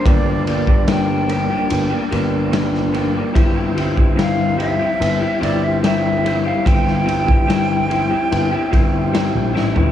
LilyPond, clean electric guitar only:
\new Staff \with { instrumentName = "Clean electric guitar" } { \time 4/4 \key c \mixolydian \tempo 4 = 73 <g, d g bes d' g'>16 <g bes d' g'>16 <g bes d' g'>16 <g bes d' g'>16 <g, d g bes d' g'>8 <g bes d' g'>16 <g bes d' g'>8 <g bes d' g'>16 <g bes d' g'>8 <g, d g bes d' g'>8 <g bes d' g'>16 <g bes d' g'>16 | <g c' e' g'>16 <c' e' g'>16 <g c' e' g'>16 <c' e' g'>16 <g c' e' g'>8 <g c' e' g'>16 <c' e' g'>8 <c' e' g'>16 <g c' e' g'>8 <g c' e' g'>8 <g c' e' g'>16 <c' e' g'>16 | <g c' e' g'>16 <c' e' g'>16 <g c' e' g'>16 <c' e' g'>16 <g c' e' g'>8 <g c' e' g'>16 <c' e' g'>8 <c' e' g'>16 <g c' e' g'>8 <g c' e' g'>8 <g c' e' g'>16 <c' e' g'>16 | }